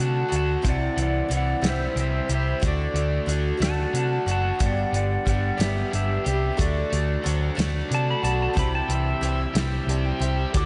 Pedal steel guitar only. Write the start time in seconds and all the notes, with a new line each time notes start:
0.01 F#5 A5
0.36 F#5 A5
0.69 D5 F#5
1.02 D5 F#5
1.37 D5 F#5
1.69 C5 E5
2.01 C5 E5
2.34 C5 E5
2.68 D5
3.62 F#5 A5
3.96 F#5 A5
4.31 F#5 A5
4.66 D5 F#5
4.96 D5 F#5
5.29 D5 F#5
5.61 G4 E5
5.95 G4 E5
6.28 G4 E5
6.61 D5
7.94 A5
8.10 B5
8.24 A5
8.42 A5
8.59 B5
8.75 A5
8.95 E5
10.57 D6